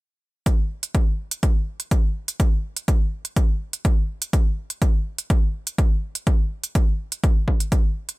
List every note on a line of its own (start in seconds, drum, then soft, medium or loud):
0.46 kick loud
0.46 closed hi-hat soft
0.83 closed hi-hat medium
0.95 kick loud
0.95 closed hi-hat soft
1.31 closed hi-hat medium
1.43 kick loud
1.43 closed hi-hat soft
1.80 closed hi-hat medium
1.91 kick loud
1.91 closed hi-hat soft
2.28 closed hi-hat medium
2.40 kick loud
2.40 closed hi-hat soft
2.77 closed hi-hat medium
2.88 kick loud
2.88 closed hi-hat soft
3.25 closed hi-hat medium
3.36 kick loud
3.36 closed hi-hat soft
3.73 closed hi-hat medium
3.85 kick loud
3.85 closed hi-hat soft
4.22 closed hi-hat medium
4.33 kick loud
4.33 closed hi-hat soft
4.70 closed hi-hat medium
4.82 kick loud
4.82 closed hi-hat soft
5.18 closed hi-hat medium
5.30 kick loud
5.30 closed hi-hat soft
5.67 closed hi-hat medium
5.78 kick loud
5.78 closed hi-hat soft
6.15 closed hi-hat medium
6.27 kick loud
6.27 closed hi-hat soft
6.64 closed hi-hat medium
6.75 kick loud
6.75 closed hi-hat soft
7.12 closed hi-hat medium
7.24 kick loud
7.24 closed hi-hat soft
7.48 kick medium
7.60 closed hi-hat medium
7.72 kick loud
7.72 closed hi-hat soft
8.09 closed hi-hat medium